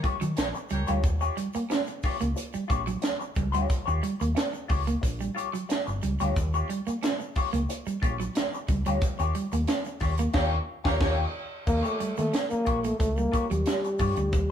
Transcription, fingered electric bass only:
0, 0, Header, 1, 3, 480
1, 0, Start_track
1, 0, Tempo, 665188
1, 747, Time_signature, 4, 2, 24, 8
1, 10473, End_track
2, 0, Start_track
2, 0, Title_t, "Fingered electric bass"
2, 0, Program_c, 0, 33
2, 158, Note_on_c, 0, 51, 95
2, 240, Note_off_c, 0, 51, 0
2, 275, Note_on_c, 0, 34, 100
2, 366, Note_off_c, 0, 34, 0
2, 515, Note_on_c, 0, 37, 78
2, 606, Note_off_c, 0, 37, 0
2, 643, Note_on_c, 0, 38, 74
2, 749, Note_off_c, 0, 38, 0
2, 749, Note_on_c, 0, 39, 113
2, 926, Note_off_c, 0, 39, 0
2, 1601, Note_on_c, 0, 37, 77
2, 1682, Note_off_c, 0, 37, 0
2, 1950, Note_on_c, 0, 34, 92
2, 2127, Note_off_c, 0, 34, 0
2, 2427, Note_on_c, 0, 37, 87
2, 2559, Note_off_c, 0, 37, 0
2, 2559, Note_on_c, 0, 38, 77
2, 2641, Note_off_c, 0, 38, 0
2, 2798, Note_on_c, 0, 39, 93
2, 2881, Note_off_c, 0, 39, 0
2, 3039, Note_on_c, 0, 39, 83
2, 3122, Note_off_c, 0, 39, 0
2, 3393, Note_on_c, 0, 37, 95
2, 3569, Note_off_c, 0, 37, 0
2, 3631, Note_on_c, 0, 34, 90
2, 3808, Note_off_c, 0, 34, 0
2, 4240, Note_on_c, 0, 31, 85
2, 4323, Note_off_c, 0, 31, 0
2, 4354, Note_on_c, 0, 37, 81
2, 4447, Note_off_c, 0, 37, 0
2, 4482, Note_on_c, 0, 38, 82
2, 4564, Note_off_c, 0, 38, 0
2, 4593, Note_on_c, 0, 39, 114
2, 4770, Note_off_c, 0, 39, 0
2, 5437, Note_on_c, 0, 37, 88
2, 5521, Note_off_c, 0, 37, 0
2, 5792, Note_on_c, 0, 34, 98
2, 5969, Note_off_c, 0, 34, 0
2, 6269, Note_on_c, 0, 37, 98
2, 6363, Note_off_c, 0, 37, 0
2, 6396, Note_on_c, 0, 38, 81
2, 6479, Note_off_c, 0, 38, 0
2, 6635, Note_on_c, 0, 39, 90
2, 6719, Note_off_c, 0, 39, 0
2, 6874, Note_on_c, 0, 39, 74
2, 6958, Note_off_c, 0, 39, 0
2, 7223, Note_on_c, 0, 39, 94
2, 7403, Note_off_c, 0, 39, 0
2, 7464, Note_on_c, 0, 39, 101
2, 7632, Note_off_c, 0, 39, 0
2, 7830, Note_on_c, 0, 39, 103
2, 7928, Note_off_c, 0, 39, 0
2, 7944, Note_on_c, 0, 39, 107
2, 8111, Note_off_c, 0, 39, 0
2, 8423, Note_on_c, 0, 39, 100
2, 8519, Note_off_c, 0, 39, 0
2, 8794, Note_on_c, 0, 51, 81
2, 8877, Note_off_c, 0, 51, 0
2, 9142, Note_on_c, 0, 34, 87
2, 9321, Note_off_c, 0, 34, 0
2, 9381, Note_on_c, 0, 37, 100
2, 9561, Note_off_c, 0, 37, 0
2, 9750, Note_on_c, 0, 39, 85
2, 9835, Note_off_c, 0, 39, 0
2, 10098, Note_on_c, 0, 43, 88
2, 10195, Note_off_c, 0, 43, 0
2, 10228, Note_on_c, 0, 38, 86
2, 10340, Note_off_c, 0, 38, 0
2, 10340, Note_on_c, 0, 39, 114
2, 10436, Note_off_c, 0, 39, 0
2, 10473, End_track
3, 0, Start_track
3, 0, Title_t, "Muted fingered electric bass strokes"
3, 1123, Note_on_c, 9, 29, 41
3, 1195, Note_off_c, 9, 29, 0
3, 1470, Note_on_c, 9, 29, 51
3, 1543, Note_off_c, 9, 29, 0
3, 1841, Note_on_c, 9, 29, 52
3, 1913, Note_off_c, 9, 29, 0
3, 4960, Note_on_c, 9, 29, 43
3, 5032, Note_off_c, 9, 29, 0
3, 5311, Note_on_c, 9, 29, 52
3, 5383, Note_off_c, 9, 29, 0
3, 5677, Note_on_c, 9, 29, 47
3, 5749, Note_off_c, 9, 29, 0
3, 8667, Note_on_c, 9, 29, 40
3, 8739, Note_off_c, 9, 29, 0
3, 9037, Note_on_c, 9, 29, 47
3, 9110, Note_off_c, 9, 29, 0
3, 10473, End_track
0, 0, End_of_file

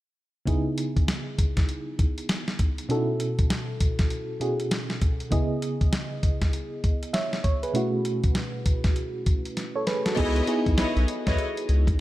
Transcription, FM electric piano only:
0, 0, Header, 1, 2, 480
1, 0, Start_track
1, 0, Key_signature, 4, "minor"
1, 0, Tempo, 606061
1, 375, Time_signature, 4, 2, 24, 8
1, 9505, End_track
2, 0, Start_track
2, 0, Title_t, "FM electric piano"
2, 0, Program_c, 0, 5
2, 361, Note_on_c, 0, 49, 64
2, 366, Note_on_c, 0, 59, 58
2, 373, Note_on_c, 0, 63, 63
2, 377, Note_on_c, 0, 64, 62
2, 381, Note_on_c, 0, 68, 73
2, 510, Control_c, 0, 64, 127
2, 2256, Note_off_c, 0, 49, 0
2, 2259, Note_off_c, 0, 59, 0
2, 2262, Note_off_c, 0, 63, 0
2, 2264, Note_off_c, 0, 64, 0
2, 2266, Note_off_c, 0, 68, 0
2, 2288, Note_on_c, 0, 47, 73
2, 2291, Note_on_c, 0, 61, 59
2, 2297, Note_on_c, 0, 63, 51
2, 2301, Note_on_c, 0, 66, 60
2, 2304, Control_c, 0, 64, 0
2, 2307, Note_on_c, 0, 69, 82
2, 2349, Note_on_c, 0, 64, 60
2, 2359, Note_off_c, 0, 63, 0
2, 2456, Control_c, 0, 64, 127
2, 3467, Note_off_c, 0, 47, 0
2, 3469, Note_off_c, 0, 61, 0
2, 3474, Note_off_c, 0, 66, 0
2, 3477, Note_off_c, 0, 69, 0
2, 3481, Note_off_c, 0, 64, 0
2, 3485, Note_on_c, 0, 47, 57
2, 3489, Note_on_c, 0, 61, 51
2, 3491, Note_on_c, 0, 64, 47
2, 3495, Note_on_c, 0, 66, 54
2, 3495, Note_on_c, 0, 68, 65
2, 4202, Note_on_c, 0, 49, 67
2, 4207, Note_off_c, 0, 64, 0
2, 4207, Note_on_c, 0, 59, 65
2, 4210, Note_off_c, 0, 47, 0
2, 4212, Note_off_c, 0, 61, 0
2, 4212, Note_on_c, 0, 75, 69
2, 4213, Note_off_c, 0, 68, 0
2, 4215, Note_off_c, 0, 66, 0
2, 4217, Note_on_c, 0, 64, 64
2, 4222, Note_on_c, 0, 68, 78
2, 4226, Control_c, 0, 64, 0
2, 4386, Control_c, 0, 64, 127
2, 5630, Note_off_c, 0, 68, 0
2, 5650, Note_on_c, 0, 76, 68
2, 5658, Note_on_c, 0, 73, 54
2, 5880, Note_off_c, 0, 76, 0
2, 5883, Note_off_c, 0, 73, 0
2, 5892, Note_on_c, 0, 73, 71
2, 6034, Note_off_c, 0, 73, 0
2, 6043, Note_on_c, 0, 71, 63
2, 6046, Note_on_c, 0, 68, 52
2, 6097, Note_off_c, 0, 49, 0
2, 6100, Note_off_c, 0, 59, 0
2, 6102, Note_off_c, 0, 75, 0
2, 6104, Note_off_c, 0, 64, 0
2, 6127, Note_on_c, 0, 47, 71
2, 6133, Note_on_c, 0, 57, 61
2, 6135, Note_on_c, 0, 61, 66
2, 6143, Note_on_c, 0, 64, 62
2, 6145, Control_c, 0, 64, 0
2, 6148, Note_on_c, 0, 66, 81
2, 6271, Note_off_c, 0, 71, 0
2, 6271, Control_c, 0, 64, 127
2, 6273, Note_off_c, 0, 68, 0
2, 7318, Note_off_c, 0, 66, 0
2, 7542, Note_off_c, 0, 47, 0
2, 7545, Note_off_c, 0, 57, 0
2, 7546, Note_off_c, 0, 61, 0
2, 7550, Note_off_c, 0, 64, 0
2, 7726, Note_on_c, 0, 73, 69
2, 7732, Note_on_c, 0, 69, 57
2, 7812, Note_off_c, 0, 73, 0
2, 7815, Note_off_c, 0, 69, 0
2, 7815, Note_on_c, 0, 71, 71
2, 7821, Note_on_c, 0, 68, 59
2, 7955, Note_off_c, 0, 71, 0
2, 7958, Note_off_c, 0, 68, 0
2, 7964, Note_on_c, 0, 69, 64
2, 7968, Note_on_c, 0, 66, 53
2, 8050, Note_on_c, 0, 59, 83
2, 8053, Note_on_c, 0, 63, 67
2, 8056, Note_on_c, 0, 64, 75
2, 8059, Note_on_c, 0, 68, 90
2, 8064, Control_c, 0, 64, 0
2, 8188, Control_c, 0, 64, 127
2, 8191, Note_off_c, 0, 69, 0
2, 8194, Note_off_c, 0, 66, 0
2, 8248, Note_off_c, 0, 59, 0
2, 8250, Note_off_c, 0, 63, 0
2, 8251, Note_off_c, 0, 64, 0
2, 8252, Note_off_c, 0, 68, 0
2, 8294, Note_on_c, 0, 59, 88
2, 8298, Note_on_c, 0, 63, 77
2, 8299, Note_on_c, 0, 64, 80
2, 8302, Note_on_c, 0, 68, 94
2, 9024, Note_off_c, 0, 59, 0
2, 9026, Note_off_c, 0, 63, 0
2, 9027, Note_off_c, 0, 64, 0
2, 9029, Note_off_c, 0, 68, 0
2, 9505, End_track
0, 0, End_of_file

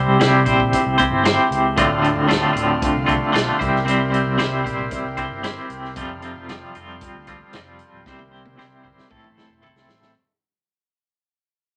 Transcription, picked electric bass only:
0, 0, Header, 1, 2, 480
1, 0, Start_track
1, 0, Tempo, 523104
1, 1633, Time_signature, 4, 2, 24, 8
1, 10794, End_track
2, 0, Start_track
2, 0, Title_t, "Picked electric bass"
2, 0, Program_c, 0, 34
2, 77, Note_on_c, 0, 36, 77
2, 424, Note_off_c, 0, 36, 0
2, 424, Note_on_c, 0, 34, 71
2, 648, Note_off_c, 0, 34, 0
2, 794, Note_on_c, 0, 36, 76
2, 1014, Note_off_c, 0, 36, 0
2, 1022, Note_on_c, 0, 31, 84
2, 1248, Note_off_c, 0, 31, 0
2, 1385, Note_on_c, 0, 37, 73
2, 1631, Note_on_c, 0, 26, 93
2, 1645, Note_off_c, 0, 37, 0
2, 1965, Note_off_c, 0, 26, 0
2, 1991, Note_on_c, 0, 26, 81
2, 2214, Note_off_c, 0, 26, 0
2, 2345, Note_on_c, 0, 26, 73
2, 2571, Note_off_c, 0, 26, 0
2, 2712, Note_on_c, 0, 36, 80
2, 2935, Note_off_c, 0, 36, 0
2, 3066, Note_on_c, 0, 35, 86
2, 3181, Note_off_c, 0, 35, 0
2, 3312, Note_on_c, 0, 36, 83
2, 3878, Note_off_c, 0, 36, 0
2, 3915, Note_on_c, 0, 36, 74
2, 4277, Note_off_c, 0, 36, 0
2, 4277, Note_on_c, 0, 34, 77
2, 4498, Note_off_c, 0, 34, 0
2, 4631, Note_on_c, 0, 36, 75
2, 4855, Note_off_c, 0, 36, 0
2, 4875, Note_on_c, 0, 31, 74
2, 5097, Note_off_c, 0, 31, 0
2, 5229, Note_on_c, 0, 36, 70
2, 5481, Note_on_c, 0, 29, 100
2, 5495, Note_off_c, 0, 36, 0
2, 5811, Note_off_c, 0, 29, 0
2, 5840, Note_on_c, 0, 29, 81
2, 6059, Note_off_c, 0, 29, 0
2, 6202, Note_on_c, 0, 29, 81
2, 6420, Note_off_c, 0, 29, 0
2, 6553, Note_on_c, 0, 38, 77
2, 6775, Note_off_c, 0, 38, 0
2, 6920, Note_on_c, 0, 29, 80
2, 7139, Note_off_c, 0, 29, 0
2, 7287, Note_on_c, 0, 26, 79
2, 7392, Note_off_c, 0, 26, 0
2, 7400, Note_on_c, 0, 36, 91
2, 7729, Note_off_c, 0, 36, 0
2, 7767, Note_on_c, 0, 36, 68
2, 8119, Note_on_c, 0, 31, 78
2, 8133, Note_off_c, 0, 36, 0
2, 8227, Note_off_c, 0, 31, 0
2, 8355, Note_on_c, 0, 33, 90
2, 8465, Note_off_c, 0, 33, 0
2, 8484, Note_on_c, 0, 33, 74
2, 8700, Note_off_c, 0, 33, 0
2, 8716, Note_on_c, 0, 28, 75
2, 8825, Note_off_c, 0, 28, 0
2, 8831, Note_on_c, 0, 36, 66
2, 9047, Note_off_c, 0, 36, 0
2, 9073, Note_on_c, 0, 33, 71
2, 9288, Note_off_c, 0, 33, 0
2, 10794, End_track
0, 0, End_of_file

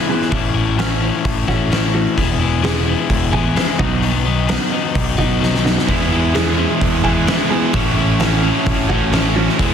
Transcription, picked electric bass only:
0, 0, Header, 1, 2, 480
1, 0, Start_track
1, 0, Key_signature, 4, "major"
1, 0, Tempo, 463679
1, 331, Time_signature, 4, 2, 24, 8
1, 10081, End_track
2, 0, Start_track
2, 0, Title_t, "Picked electric bass"
2, 0, Program_c, 0, 34
2, 334, Note_on_c, 0, 33, 88
2, 1131, Note_off_c, 0, 33, 0
2, 1298, Note_on_c, 0, 33, 90
2, 1495, Note_off_c, 0, 33, 0
2, 1532, Note_on_c, 0, 33, 78
2, 2130, Note_off_c, 0, 33, 0
2, 2252, Note_on_c, 0, 28, 86
2, 3049, Note_off_c, 0, 28, 0
2, 3206, Note_on_c, 0, 28, 82
2, 3408, Note_off_c, 0, 28, 0
2, 3449, Note_on_c, 0, 33, 80
2, 3650, Note_off_c, 0, 33, 0
2, 3928, Note_on_c, 0, 35, 85
2, 4725, Note_off_c, 0, 35, 0
2, 5129, Note_on_c, 0, 35, 91
2, 5329, Note_off_c, 0, 35, 0
2, 5368, Note_on_c, 0, 35, 82
2, 5966, Note_off_c, 0, 35, 0
2, 6093, Note_on_c, 0, 40, 89
2, 6887, Note_off_c, 0, 40, 0
2, 7055, Note_on_c, 0, 40, 84
2, 7252, Note_off_c, 0, 40, 0
2, 7294, Note_on_c, 0, 40, 81
2, 7491, Note_off_c, 0, 40, 0
2, 8008, Note_on_c, 0, 33, 88
2, 8804, Note_off_c, 0, 33, 0
2, 8966, Note_on_c, 0, 33, 99
2, 9166, Note_off_c, 0, 33, 0
2, 9209, Note_on_c, 0, 33, 80
2, 9806, Note_off_c, 0, 33, 0
2, 9926, Note_on_c, 0, 28, 89
2, 10081, Note_off_c, 0, 28, 0
2, 10081, End_track
0, 0, End_of_file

